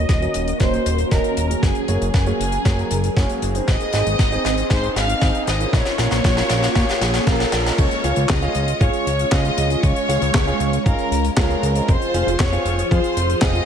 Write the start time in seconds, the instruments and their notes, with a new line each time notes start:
Already playing: string machine D#3 A#3 C#4 F#4, violin section D#5 D#6, riser
0.09 analog synth bass D#1, kick, snare, closed hi-hat
0.22 grand piano C#4 F#4 A#4 D#5, closed hi-hat
0.34 analog synth bass D#1, closed hi-hat
0.48 closed hi-hat
0.60 analog synth bass D#1, grand piano C#4 F#4 A#4 D#5, violin section C5 C6, kick, snare, closed hi-hat
0.74 closed hi-hat
0.86 analog synth bass D#1, closed hi-hat
0.98 closed hi-hat
1.11 analog synth bass D#1, grand piano C#4 F#4 A#4 D#5, violin section A#4 A#5, kick, snare, closed hi-hat
1.24 closed hi-hat
1.37 analog synth bass D#1, closed hi-hat
1.50 grand piano A#3 F#4 G#4 A#4, closed hi-hat
1.63 analog synth bass F#1, string machine F#3 G#4 A#4, violin section G#4 G#5, kick, snare, closed hi-hat
1.75 closed hi-hat
1.88 analog synth bass F#1, grand piano A#3 F#4 G#4 C#5, closed hi-hat
2.01 analog synth bass F#1, closed hi-hat
2.14 analog synth bass F#1, violin section G#4 G#5, kick, snare, closed hi-hat
2.26 grand piano A#3 F#4 G#4 C#5, closed hi-hat
2.40 analog synth bass F#1, closed hi-hat
2.52 closed hi-hat
2.65 analog synth bass F#1, grand piano A#3 F#4 G#4 C#5, kick, snare, closed hi-hat
2.79 closed hi-hat
2.91 analog synth bass F#1, closed hi-hat
3.04 closed hi-hat
3.17 analog synth bass F#1, grand piano A#3 F#4 G#4 C#5, kick, snare, closed hi-hat
3.29 closed hi-hat
3.42 analog synth bass F#1, closed hi-hat
3.55 grand piano C4 D#4 G#4 C5, closed hi-hat
3.68 analog synth bass G#1, string machine C4 D#4, violin section D#5 D#6, kick, snare, closed hi-hat
3.80 closed hi-hat
3.93 analog synth bass G#1, grand piano C4 D#4 G#4 D#5, snare, closed hi-hat
4.06 analog synth bass G#1, closed hi-hat
4.19 analog synth bass G#1, kick, snare, closed hi-hat
4.32 grand piano C4 D#4 G#4 D#5, closed hi-hat
4.45 analog synth bass G#1, snare, closed hi-hat
4.58 closed hi-hat
4.70 analog synth bass G#1, grand piano C4 D#4 G#4 D#5, violin section C5 C6, kick, snare, closed hi-hat
4.83 closed hi-hat
4.96 analog synth bass G#1, violin section F5 F6, snare, closed hi-hat
5.09 closed hi-hat
5.21 analog synth bass G#1, grand piano C4 D#4 G#4 D#5, kick, snare, closed hi-hat
5.35 closed hi-hat
5.47 analog synth bass G#1, violin section D#5 D#6, snare, closed hi-hat
5.60 grand piano C#4 F4 A#4 D#5, closed hi-hat
5.73 analog synth bass A#1, string machine A#3 C#4 F4, violin section C#5 C#6, kick, snare, closed hi-hat
5.85 snare, closed hi-hat
5.98 analog synth bass A#1, grand piano C#4 F4 A#4 F5, snare, closed hi-hat
6.11 analog synth bass A#1, snare, closed hi-hat
6.24 analog synth bass A#1, kick, snare, closed hi-hat
6.37 grand piano C#4 F4 A#4 F5, snare, closed hi-hat
6.50 analog synth bass A#1, snare, closed hi-hat
6.63 snare, closed hi-hat
6.75 analog synth bass A#2, grand piano C#4 F4 A#4 F5, kick, snare, closed hi-hat
6.89 snare, closed hi-hat
7.01 analog synth bass A#1, snare, closed hi-hat
7.14 snare, closed hi-hat
7.27 analog synth bass A#1, grand piano C#4 F4 A#4 F5, violin section A#4 A#5, kick, snare, closed hi-hat
7.40 snare, closed hi-hat
7.52 analog synth bass A#1, snare, closed hi-hat
7.65 grand piano C#4 F4 G#4 D#5, snare, closed hi-hat
7.78 analog synth bass C#2, string machine G#3 C#4 F4, violin section C#5 C#6, kick, closed hi-hat, crash
7.91 closed hi-hat
8.04 analog synth bass C#2, grand piano C#4 F4 G#4 F5, closed hi-hat
8.16 analog synth bass C#2, closed hi-hat
8.29 analog synth bass C#2, violin section D#5 D#6, kick, snare, clap, closed hi-hat
8.42 grand piano C#4 F4 G#4 F5, closed hi-hat
8.55 analog synth bass C#2, closed hi-hat
8.68 closed hi-hat
8.81 analog synth bass G#1, grand piano C#4 F4 G#4 F5, violin section C#5 C#6, kick, closed hi-hat
8.93 closed hi-hat
9.07 analog synth bass C#2, closed hi-hat
9.19 closed hi-hat
9.32 analog synth bass C#2, grand piano C#4 F4 G#4 F5, violin section D#5 D#6, kick, snare, clap, closed hi-hat
9.45 closed hi-hat
9.57 analog synth bass C#2, closed hi-hat
9.70 grand piano C#4 F4 G#4 D#5, closed hi-hat
9.83 analog synth bass C#2, violin section C#5 C#6, kick, closed hi-hat
9.96 closed hi-hat
10.09 analog synth bass C#2, grand piano C#4 F4 G#4 F5, closed hi-hat
10.22 analog synth bass C#2, closed hi-hat
10.34 analog synth bass C#2, kick, snare, clap, closed hi-hat
10.47 grand piano C#4 F4 G#4 F5, closed hi-hat
10.60 analog synth bass C#2, closed hi-hat
10.73 closed hi-hat
10.86 analog synth bass G#1, grand piano C#4 F4 G#4 F5, violin section A#4 A#5, kick, closed hi-hat
10.99 closed hi-hat
11.11 analog synth bass C#2, closed hi-hat
11.25 closed hi-hat
11.37 analog synth bass C#2, grand piano C#4 F4 G#4 F5, violin section A#4 A#5, kick, snare, clap, closed hi-hat
11.50 closed hi-hat
11.63 analog synth bass C#2, closed hi-hat
11.75 grand piano C4 F4 G#4 D#5, closed hi-hat
11.88 analog synth bass F1, string machine F3 G#4, violin section C5 C6, kick, closed hi-hat
12.02 closed hi-hat
12.14 analog synth bass F1, grand piano C4 F4 G#4 F5, closed hi-hat
12.27 analog synth bass F1, closed hi-hat
12.39 analog synth bass F1, violin section C#5 C#6, kick, snare, clap, closed hi-hat
12.53 grand piano C4 F4 G#4 F5, closed hi-hat
12.65 analog synth bass F1, closed hi-hat
12.79 closed hi-hat
12.91 analog synth bass F2, grand piano C4 F4 G#4 F5, violin section C5 C6, kick, closed hi-hat
13.04 closed hi-hat
13.17 analog synth bass F1, closed hi-hat
13.30 closed hi-hat
13.41 analog synth bass F1, grand piano C4 F4 G#4 F5, violin section D#5 D#6, kick, snare, clap, closed hi-hat
13.55 closed hi-hat